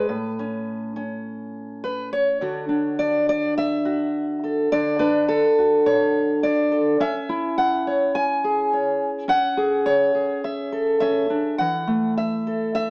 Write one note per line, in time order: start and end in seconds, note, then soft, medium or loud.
0.00 1.82 B4 medium
0.09 2.40 A2 medium
0.39 0.95 C#4 soft
0.96 2.37 C#4 soft
1.84 2.12 B4 medium
2.13 3.56 C#5 medium
2.41 4.71 D3 medium
2.41 2.68 D4 soft
2.41 3.84 F#4 soft
2.69 4.67 D4 medium
2.99 3.27 D5 medium
3.29 3.57 D5 loud
3.58 4.72 E5 loud
3.85 4.68 F#4 soft
4.44 4.99 A4 soft
4.72 7.00 D3 medium
4.72 5.28 D5 loud
4.99 6.97 D4 medium
4.99 5.85 B4 loud
5.29 6.43 A4 medium
5.59 6.98 F#4 medium
5.86 6.71 C#5 loud
6.43 7.00 D5 loud
6.72 7.00 A4 soft
7.00 9.26 C#4 medium
7.00 7.86 E5 loud
7.29 9.28 E4 medium
7.58 8.15 F#5 medium
7.87 8.72 C#5 medium
8.15 9.29 G#5 loud
8.44 9.26 G#4 soft
8.73 9.26 C#5 soft
9.28 11.01 C#4 medium
9.28 10.44 F#5 loud
9.57 10.13 G#4 medium
9.86 10.72 C#5 medium
10.15 11.56 G#4 soft
10.44 10.99 E5 medium
10.72 12.46 A4 medium
11.00 11.30 C#4 medium
11.00 11.58 E5 loud
11.30 11.59 D4 medium
11.58 12.90 E3 medium
11.58 12.17 F#5 loud
11.87 12.90 A3 medium
12.17 12.74 E5 medium
12.47 12.90 A4 medium
12.75 12.90 E5 loud